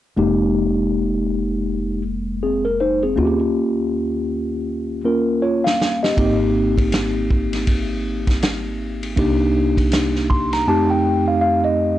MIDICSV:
0, 0, Header, 1, 4, 480
1, 0, Start_track
1, 0, Key_signature, -4, "minor"
1, 0, Tempo, 750000
1, 111, Time_signature, 4, 2, 24, 8
1, 7671, End_track
2, 0, Start_track
2, 0, Title_t, "Tine electric piano"
2, 0, Program_c, 0, 4
2, 106, Note_on_c, 0, 56, 65
2, 107, Note_on_c, 0, 58, 62
2, 116, Note_on_c, 0, 63, 58
2, 120, Note_on_c, 0, 67, 72
2, 1290, Note_off_c, 0, 63, 0
2, 1292, Note_off_c, 0, 67, 0
2, 1555, Note_on_c, 0, 68, 58
2, 1559, Note_on_c, 0, 60, 46
2, 1691, Note_off_c, 0, 68, 0
2, 1693, Note_off_c, 0, 60, 0
2, 1695, Note_on_c, 0, 70, 57
2, 1786, Note_off_c, 0, 70, 0
2, 1796, Note_on_c, 0, 72, 60
2, 1798, Note_on_c, 0, 63, 48
2, 1931, Note_off_c, 0, 72, 0
2, 1933, Note_off_c, 0, 63, 0
2, 1939, Note_on_c, 0, 68, 52
2, 1944, Note_on_c, 0, 60, 43
2, 2003, Note_off_c, 0, 56, 0
2, 2004, Note_off_c, 0, 58, 0
2, 2022, Note_on_c, 0, 58, 61
2, 2027, Note_on_c, 0, 61, 59
2, 2035, Note_on_c, 0, 65, 59
2, 2039, Note_on_c, 0, 66, 59
2, 2081, Note_on_c, 0, 67, 68
2, 2085, Note_off_c, 0, 66, 0
2, 2166, Note_off_c, 0, 68, 0
2, 2168, Note_off_c, 0, 60, 0
2, 3202, Note_off_c, 0, 58, 0
2, 3205, Note_off_c, 0, 61, 0
2, 3209, Note_off_c, 0, 65, 0
2, 3228, Note_on_c, 0, 58, 49
2, 3231, Note_on_c, 0, 61, 46
2, 3233, Note_off_c, 0, 67, 0
2, 3234, Note_on_c, 0, 65, 48
2, 3235, Note_on_c, 0, 70, 54
2, 3466, Note_off_c, 0, 65, 0
2, 3470, Note_on_c, 0, 73, 56
2, 3473, Note_off_c, 0, 70, 0
2, 3474, Note_on_c, 0, 65, 49
2, 3608, Note_off_c, 0, 73, 0
2, 3610, Note_off_c, 0, 65, 0
2, 3612, Note_on_c, 0, 77, 61
2, 3842, Note_off_c, 0, 77, 0
2, 3858, Note_on_c, 0, 75, 56
2, 3861, Note_on_c, 0, 67, 49
2, 3937, Note_off_c, 0, 58, 0
2, 3944, Note_on_c, 0, 58, 65
2, 3949, Note_on_c, 0, 60, 59
2, 3951, Note_off_c, 0, 61, 0
2, 3952, Note_off_c, 0, 67, 0
2, 3954, Note_on_c, 0, 63, 57
2, 3959, Note_on_c, 0, 67, 74
2, 4085, Note_off_c, 0, 75, 0
2, 5842, Note_off_c, 0, 58, 0
2, 5845, Note_off_c, 0, 60, 0
2, 5847, Note_off_c, 0, 63, 0
2, 5850, Note_off_c, 0, 67, 0
2, 5864, Note_on_c, 0, 58, 67
2, 5872, Note_on_c, 0, 62, 59
2, 5874, Note_on_c, 0, 63, 61
2, 5881, Note_on_c, 0, 67, 75
2, 6591, Note_on_c, 0, 84, 66
2, 6726, Note_off_c, 0, 84, 0
2, 6741, Note_on_c, 0, 82, 61
2, 6808, Note_off_c, 0, 58, 0
2, 6812, Note_off_c, 0, 62, 0
2, 6814, Note_off_c, 0, 63, 0
2, 6817, Note_off_c, 0, 67, 0
2, 6827, Note_on_c, 0, 41, 68
2, 6828, Note_off_c, 0, 82, 0
2, 6830, Note_on_c, 0, 57, 60
2, 6836, Note_on_c, 0, 60, 59
2, 6836, Note_on_c, 0, 81, 67
2, 6838, Note_on_c, 0, 63, 58
2, 6843, Note_on_c, 0, 67, 75
2, 6969, Note_off_c, 0, 81, 0
2, 6978, Note_on_c, 0, 79, 59
2, 7201, Note_off_c, 0, 79, 0
2, 7217, Note_on_c, 0, 77, 57
2, 7297, Note_off_c, 0, 77, 0
2, 7305, Note_on_c, 0, 77, 66
2, 7443, Note_off_c, 0, 77, 0
2, 7453, Note_on_c, 0, 75, 61
2, 7671, Note_off_c, 0, 41, 0
2, 7671, Note_off_c, 0, 57, 0
2, 7671, Note_off_c, 0, 60, 0
2, 7671, Note_off_c, 0, 63, 0
2, 7671, Note_off_c, 0, 67, 0
2, 7671, Note_off_c, 0, 75, 0
2, 7671, End_track
3, 0, Start_track
3, 0, Title_t, "Upright bass"
3, 0, Program_c, 1, 32
3, 110, Note_on_c, 1, 29, 68
3, 2005, Note_off_c, 1, 29, 0
3, 2031, Note_on_c, 1, 39, 73
3, 3926, Note_off_c, 1, 39, 0
3, 3953, Note_on_c, 1, 32, 76
3, 5847, Note_off_c, 1, 32, 0
3, 5870, Note_on_c, 1, 36, 73
3, 6805, Note_off_c, 1, 36, 0
3, 7671, End_track
4, 0, Start_track
4, 0, Title_t, "Drums"
4, 3626, Note_on_c, 9, 38, 67
4, 3690, Note_off_c, 9, 38, 0
4, 3721, Note_on_c, 9, 38, 85
4, 3785, Note_off_c, 9, 38, 0
4, 3866, Note_on_c, 9, 38, 73
4, 3930, Note_off_c, 9, 38, 0
4, 3951, Note_on_c, 9, 36, 92
4, 3953, Note_on_c, 9, 51, 66
4, 4015, Note_off_c, 9, 36, 0
4, 4017, Note_off_c, 9, 51, 0
4, 4336, Note_on_c, 9, 36, 74
4, 4340, Note_on_c, 9, 51, 55
4, 4400, Note_off_c, 9, 36, 0
4, 4404, Note_off_c, 9, 51, 0
4, 4429, Note_on_c, 9, 44, 45
4, 4429, Note_on_c, 9, 51, 64
4, 4440, Note_on_c, 9, 38, 99
4, 4493, Note_off_c, 9, 44, 0
4, 4493, Note_off_c, 9, 51, 0
4, 4504, Note_off_c, 9, 38, 0
4, 4675, Note_on_c, 9, 36, 82
4, 4739, Note_off_c, 9, 36, 0
4, 4818, Note_on_c, 9, 51, 57
4, 4822, Note_on_c, 9, 38, 28
4, 4882, Note_off_c, 9, 51, 0
4, 4886, Note_off_c, 9, 38, 0
4, 4909, Note_on_c, 9, 51, 71
4, 4911, Note_on_c, 9, 36, 80
4, 4973, Note_off_c, 9, 51, 0
4, 4975, Note_off_c, 9, 36, 0
4, 5294, Note_on_c, 9, 36, 70
4, 5294, Note_on_c, 9, 51, 47
4, 5307, Note_on_c, 9, 38, 33
4, 5358, Note_off_c, 9, 36, 0
4, 5358, Note_off_c, 9, 51, 0
4, 5371, Note_off_c, 9, 38, 0
4, 5392, Note_on_c, 9, 44, 43
4, 5392, Note_on_c, 9, 51, 59
4, 5397, Note_on_c, 9, 38, 101
4, 5456, Note_off_c, 9, 44, 0
4, 5456, Note_off_c, 9, 51, 0
4, 5461, Note_off_c, 9, 38, 0
4, 5778, Note_on_c, 9, 51, 54
4, 5842, Note_off_c, 9, 51, 0
4, 5870, Note_on_c, 9, 36, 90
4, 5870, Note_on_c, 9, 51, 71
4, 5934, Note_off_c, 9, 36, 0
4, 5934, Note_off_c, 9, 51, 0
4, 6255, Note_on_c, 9, 36, 76
4, 6258, Note_on_c, 9, 51, 54
4, 6319, Note_off_c, 9, 36, 0
4, 6322, Note_off_c, 9, 51, 0
4, 6347, Note_on_c, 9, 44, 45
4, 6347, Note_on_c, 9, 51, 62
4, 6357, Note_on_c, 9, 38, 99
4, 6411, Note_off_c, 9, 44, 0
4, 6411, Note_off_c, 9, 51, 0
4, 6421, Note_off_c, 9, 38, 0
4, 6501, Note_on_c, 9, 38, 31
4, 6565, Note_off_c, 9, 38, 0
4, 6595, Note_on_c, 9, 36, 81
4, 6659, Note_off_c, 9, 36, 0
4, 6737, Note_on_c, 9, 51, 57
4, 6741, Note_on_c, 9, 38, 29
4, 6801, Note_off_c, 9, 51, 0
4, 6805, Note_off_c, 9, 38, 0
4, 7671, End_track
0, 0, End_of_file